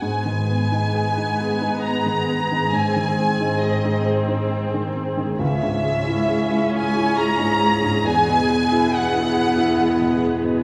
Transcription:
<<
  \new Staff \with { instrumentName = "Violin section" } { \time 3/4 \key gis \minor \tempo 4 = 68 gis''2 ais''4 | gis''4 dis''8 r4. | e''4. gis''8 ais''4 | gis''4 fis''4. r8 | }
  \new Staff \with { instrumentName = "Viola section" } { \time 3/4 \key gis \minor << { gis'2.~ | gis'2. | gis'2.~ | gis'2. | } \\ { b2. | bis2. | cis'2. | b2. | } >> }
  \new Staff \with { instrumentName = "Felt piano" } { \time 3/4 \key gis \minor gis,16 dis16 b16 dis'16 gis'16 dis'16 gis'16 dis'16 b16 dis16 b16 dis16 | gis,16 dis16 bis16 dis'16 gis'16 dis'16 gis'16 dis'16 bis16 dis16 bis16 dis16 | cis,16 gis,16 gis16 e'16 gis'16 e'16 gis'16 e'16 gis16 gis,16 gis16 gis,16 | e,16 b,16 gis16 e'16 gis'16 e'16 gis'16 e'16 gis16 b,16 gis16 b,16 | }
  \new Staff \with { instrumentName = "Cello section" } { \clef bass \time 3/4 \key gis \minor gis,2.~ | gis,2. | cis,2. | e,2. | }
>>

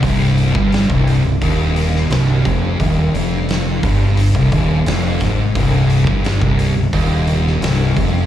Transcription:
<<
  \new Staff \with { instrumentName = "String machine" } { \clef bass \time 4/4 \key c \minor \tempo 4 = 87 <c g d'>1~ | <c g d'>1~ | <c g d'>1 | }
  \new Staff \with { instrumentName = "Distorted electric guitar" } { \clef bass \time 4/4 \key c \minor c,8. g,8 c,8 c,16 ees,4 c,8 f,8 | ees,8 f,4 g,8. c,16 ees,8 f,8 aes,8 | c,8. g,8 c,8 c,16 ees,4 c,8 f,8 | }
  \new Staff \with { instrumentName = "Distorted electric guitar" } { \clef bass \time 4/4 \key c \minor c,8. g,8 c,8 c,16 ees,4 c,8 f,8 | ees,8 f,4 g,8. c,16 ees,8 f,8 aes,8 | c,8. g,8 c,8 c,16 ees,4 c,8 f,8 | }
  \new Staff \with { instrumentName = "Fingered electric bass" } { \clef bass \time 4/4 \key c \minor c,,8. g,,8 c,,8 c,,16 ees,,4 c,,8 f,,8 | ees,,8 f,,4 g,,8. c,,16 ees,,8 f,,8 aes,,8 | c,,8. g,,8 c,,8 c,,16 ees,,4 c,,8 f,,8 | }
  \new DrumStaff \with { instrumentName = "Drums" } \drummode { \time 4/4 <hho bd>8 hho16 bd16 <hho sn>16 bd16 hho8 <hho bd>8 hho16 sn16 <hho sn>8 <hho bd>8 | <hho bd>8 hho8 <hho sn>8 <hho bd>8 hho16 bd16 <hho bd>8 <hho sn>8 <hho bd sn>8 | <hho bd>8 hho16 bd16 <hho sn>16 bd16 hho8 <hho bd>8 hho16 sn16 <hho sn>8 <hho bd>8 | }
>>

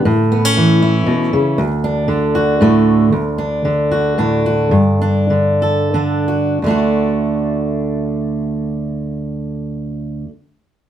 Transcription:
\new Staff \with { instrumentName = "Steel-string acoustic guitar" } { \time 3/4 \key d \major \tempo 4 = 107 << { r8 b16 cis'8. e'4. | r8 d'4 fis'8 a4 | r8 d'4 fis'8 d'8 fis'8 | r8 d'4 a'8 d'8 fis'8 |
<d a d' fis'>2.~ | <d a d' fis'>2. | } \\ { a,4 e4 b,8 cis8 | d,4 d4 a,4 | d,4 d4 a,4 | g,4 d4 d4 |
d,2.~ | d,2. | } >> }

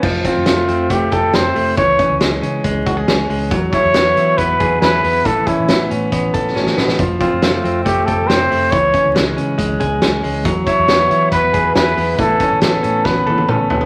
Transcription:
<<
  \new Staff \with { instrumentName = "Trumpet" } { \time 4/4 \key a \major \tempo 4 = 138 r8 f'4. g'8 a'8 c''4 | cis''4 r2. | r8 cis''4. b'4 b'4 | a'8 e'4 r2 r8 |
r8 f'4. g'8 a'8 c''4 | cis''4 r2. | r8 cis''4. b'4 b'4 | a'4 a'4 b'4 a'8. r16 | }
  \new Staff \with { instrumentName = "Clean electric guitar" } { \time 4/4 \key a \major f8 c'8 a8 c'8 a8 g'8 c'8 a8 | e8 cis'8 gis8 cis'8 gis8 fis'16 gis'16 cis'8 gis8 | fis8 e'8 b8 e'8 b8 gis'8 e'8 b8 | e8 cis'8 b8 cis'8 b8 a'8 cis'8 b8 |
f8 c'8 a8 c'8 a8 g'8 c'8 a8 | e8 cis'8 gis8 cis'8 gis8 gis'8 cis'8 gis8 | fis8 e'8 b8 e'8 b8 gis'8 e'8 b8 | e8 cis'8 b8 cis'8 b8 a'8 cis'8 b8 | }
  \new Staff \with { instrumentName = "Fingered electric bass" } { \clef bass \time 4/4 \key a \major f,,8 r16 f,,16 f,,8 f,8 f,,8 f,,8 f,,8 f,,8 | cis,8 r16 cis,16 cis,8 cis8 cis,8 cis,8 cis,8 cis,8 | e,8 r16 e,16 e,8 e8 e,8 e,8 e,8 e,8 | a,,8 r16 a,,16 a,,8 a,8 a,,8 a,,8 a,,8 a,,8 |
f,,8 r16 f,,16 f,,8 f,8 f,,8 f,,8 f,,8 f,,8 | cis,8 r16 cis,16 cis,8 cis8 cis,8 cis,8 cis,8 cis,8 | e,8 r16 e,16 e,8 e8 e,8 e,8 e,8 e,8 | a,,8 r16 a,,16 a,,8 a,8 a,,8 a,,8 a,,8 a,,8 | }
  \new DrumStaff \with { instrumentName = "Drums" } \drummode { \time 4/4 <cymc bd>8 <hh bd>8 <hh sn>8 hh8 <hh bd>8 <hh bd>8 <hh sn>8 hho8 | <hh bd>8 <hh bd>8 <hh sn>8 hh8 <hh bd>8 <hh bd>8 <hh sn>8 hho8 | <hh bd>8 <hh bd>8 <hh sn>8 hh8 <hh bd>8 <hh bd>8 <hh sn>8 hho8 | <hh bd>8 <hh bd>8 <hh sn>8 hh8 <hh bd>8 <hh bd>8 sn16 sn16 sn16 sn16 |
<hh bd>8 <hh bd>8 <hh sn>8 hh8 <hh bd>8 <hh bd>8 <hh sn>8 hho8 | <hh bd>8 <hh bd>8 <hh sn>8 hh8 <hh bd>8 <hh bd>8 <hh sn>8 hho8 | <hh bd>8 <hh bd>8 <hh sn>8 hh8 <hh bd>8 <hh bd>8 <hh sn>8 hho8 | <hh bd>8 <hh bd>8 <hh sn>8 hh8 <bd sn>8 tommh16 tommh16 toml8 tomfh16 tomfh16 | }
>>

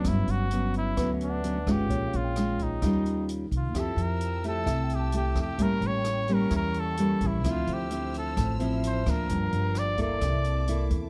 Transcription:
<<
  \new Staff \with { instrumentName = "String section" } { \time 4/4 \key d \minor \tempo 4 = 130 << { r1 | r1 | <a'' e'''>1 | <bes cis'''>1 |
<c'' e'''>1 | <g' bes''>2 <e'' d'''>2 | } \\ { r1 | r1 | g''1~ | g''1 |
f'''1 | f''2 a''2 | } >> }
  \new Staff \with { instrumentName = "Tine electric piano" } { \time 4/4 \key d \minor r2 b'16 e''16 fis''4. | des''16 f''16 g''2~ g''8 r4 | r2 e''16 g''16 a''4.~ | a''4 r2. |
r2 a''2~ | a''8 r2. r8 | }
  \new Staff \with { instrumentName = "Flugelhorn" } { \time 4/4 \key d \minor e'8 fis'4 e'4 d'4 g'8~ | g'8 f'4 ees'4. r8 f'8 | a'8 bes'4 a'4 g'8 g'8 g'8 | bes'8 cis''4 bes'8 bes'8 a'4 e'8 |
f'8 g'4 a'4 r8 c''8 bes'8~ | bes'4 d''8 d''2 r8 | }
  \new Staff \with { instrumentName = "Nylon-string guitar" } { \time 4/4 \key d \minor << { <fis b cis'>4 <fis b cis'>4 <fis b cis'>4 <fis b cis'>8 <gis cis' f'>8~ | <gis cis' f'>4 <aes des' f'>4 <g des' f'>4. r8 | <e' g'>4. <a e' g'>4. <a e' g'>4 | <g bes cis'>4. <g bes cis'>4. <g bes cis'>4 |
<f c' e'>4 <f c' e'>4. <f c' e'>4 <f bes d'>8~ | <f bes d'>4. <bes e' a'>4. <bes e' a'>4 | } \\ { g,2 d2 | bes,2 ees2 | f2 c2 | a,2 e2 |
d2 a,2 | g,2 c2 | } >> }
  \new Staff \with { instrumentName = "Upright bass" } { \clef bass \time 4/4 \key d \minor g,,8 g,,4. d,4. g,,8 | bes,,8 bes,,4. ees,4. c,8 | f,8 f,4. c,4. f,8 | a,,8 a,,4. e,4. a,,8 |
d,8 d,4. a,,4. d,8 | g,,8 g,,4. c,4. e,8 | }
  \new DrumStaff \with { instrumentName = "Drums" } \drummode { \time 4/4 <hh bd ss>8 hh8 hh8 hh8 <hh bd ss>8 hh8 hh8 <hh bd ss>8 | <hh bd>8 hh8 <hh ss>8 <hh bd>8 <hh bd ss>8 hh8 hh8 <hh bd>8 | <hh bd ss>8 hh8 hh8 hh8 <hh bd ss>8 hh8 hh8 <hh bd ss>8 | <hh bd>8 hh8 <hh ss>8 hh8 <hh bd ss>8 hh8 hh8 <hh bd>8 |
<hh bd ss>8 hh8 hh8 hh8 <hh bd ss>8 hh8 hh8 <hh bd ss>8 | <hh bd>8 hh8 <hh ss>8 <hh bd>8 <hh bd ss>8 hh8 hh8 <hh bd>8 | }
>>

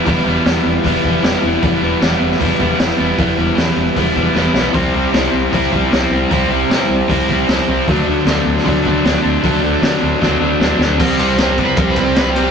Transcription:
<<
  \new Staff \with { instrumentName = "Electric slide guitar" } { \time 4/4 \key c \lydian \tempo 4 = 154 r1 | r1 | r1 | r1 |
r1 | r1 | r1 | r4 \tuplet 3/2 { r4 b'8 g'8 b'8 g'8 b'8 g'8 g'8 } | }
  \new Staff \with { instrumentName = "Overdriven electric guitar" } { \time 4/4 \key c \lydian <e g b e'>8 <g b e'>8 <e g b e'>4 <e g b e'>8 <g b e'>8 <e g b e'>8 <g b e'>8 | <e g b e'>8 <g b e'>8 <e g b e'>4 <e g b e'>8 <g b e'>8 <e g b e'>8 <g b e'>8 | <e g b e'>8 <g b e'>8 <e g b e'>4 <e g b e'>8 <g b e'>8 <e g b e'>8 <g b e'>8 | <c g c' e'>8 <g c' e'>8 <c g c' e'>4 <c g c' e'>8 <g c' e'>8 <c g c' e'>8 <g c' e'>8 |
<c g c' e'>8 <g c' e'>8 <c g c' e'>4 <c g c' e'>8 <g c' e'>8 <c g c' e'>8 <g c' e'>8 | <d fis a d'>8 <fis a d'>8 <d fis a d'>4 <d fis a d'>8 <fis a d'>8 <d fis a d'>8 <fis a d'>8 | <d fis a d'>8 <fis a d'>8 <d fis a d'>4 <d fis a d'>8 <fis a d'>8 <d fis a d'>8 <fis a d'>8 | <c g c'>8 <c g c'>8 <c g c'>8 <c g c'>8 <c g c'>8 <c g c'>8 <c g c'>8 <c g c'>8 | }
  \new Staff \with { instrumentName = "Picked electric bass" } { \clef bass \time 4/4 \key c \lydian e,,8 e,,8 e,8 e,,8 e,,8 e,,8 e,,8 e,,8 | e,,8 e,,8 e,,8 e,,8 e,,8 e,,8 e,,8 e,,8 | e,,8 e,,8 e,8 e,,8 e,,8 e,,8 e,,8 b,,8 | c,8 c,8 c,8 c,8 c,8 c,8 c,8 c,8 |
c,8 c,8 c8 c,8 c,8 c,8 c,8 c,8 | d,8 d,8 d,8 d,8 d,8 d,8 d,8 d,8 | d,8 d,8 d8 d,8 d,8 d,8 d,8 d,8 | c,8 c,8 c,8 c,8 c,8 c,8 c,4 | }
  \new DrumStaff \with { instrumentName = "Drums" } \drummode { \time 4/4 <hho bd>4 <hho sn>4 <hho bd>8 bd8 <hho sn>16 sn8. | <hho bd>4 <hho sn>8. sn16 <hho bd>8 bd8 <hho sn>16 sn8. | <hho bd>4 <hho sn>4 <hho bd>8 bd8 sn8 sn8 | <hho bd>4 <hho sn>4 <hho bd>8 bd8 <hho sn>4 |
<hho bd>4 <hho sn>4 <hho bd>8 bd8 <hho sn>16 sn8. | <hho bd>4 <hho sn>8. sn16 <hho bd>8 bd8 <hho sn>4 | <hho bd>4 <hho sn>4 <bd sn>4 sn8 sn8 | <cymc bd>8 cymr8 <cymr sn>8 <bd cymr>8 <bd cymr>8 <bd cymr>8 <cymr sn>8 cymr8 | }
>>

